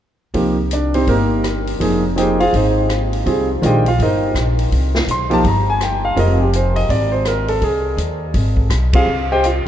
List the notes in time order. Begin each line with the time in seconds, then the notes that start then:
0.34 C2 F3 A#3 D#4 G4, kick, open hi-hat
0.71 D4 D5, closed hi-hat
0.94 C4 D#4 G4 C5, open hi-hat
1.07 G1 A#3 D#4 G4 A#4, kick, open hi-hat
1.44 cross-stick, closed hi-hat
1.67 open hi-hat
1.80 F1 F3 A#3 D#4 G#4, kick, open hi-hat
2.16 F3 A#3 D#4 G4 G#4 C5 D#5 G5, closed hi-hat
2.40 F4 G#4 C5 F5, open hi-hat
2.53 G#1 D#4 G#4 C5 D#5, kick, open hi-hat
2.90 cross-stick, closed hi-hat
3.13 open hi-hat
3.26 C2 G3 C4 F4 G#4, kick, open hi-hat
3.62 A#1 D#3 G#3 D4 F4, closed hi-hat
3.66 G4 C5 D#5 G5
3.86 F4 F5, open hi-hat
3.99 G1 A#4 C5 D#5, kick, open hi-hat
4.03 D#4
4.34 A#1, cross-stick, closed hi-hat
4.59 open hi-hat
4.71 C2, kick, open hi-hat
4.95 snare
5.07 B1, closed hi-hat
5.11 C6
5.30 F3 A#3 D#4 G4 A5, open hi-hat
5.44 G1 A#5, kick, open hi-hat
5.70 G#5
5.81 G5, cross-stick, closed hi-hat
6.05 F5
6.16 F1 G3 C4 F4 A#4 D#5, kick, open hi-hat
6.42 G4
6.53 C5, closed hi-hat
6.76 D#5, open hi-hat
6.89 G#1 D5, kick, open hi-hat
7.12 C5
7.25 A#4, cross-stick, closed hi-hat
7.48 A4, open hi-hat
7.61 C2 G#4, kick, open hi-hat
7.97 D#2, closed hi-hat
8.34 G#1, kick, open hi-hat
8.57 kick
8.70 B1, cross-stick, closed hi-hat
8.93 G3 C4 F4 G#4 F5, kick, ride
9.06 C2
9.32 G4 C5 D#5 G5
9.44 F4 F5, closed hi-hat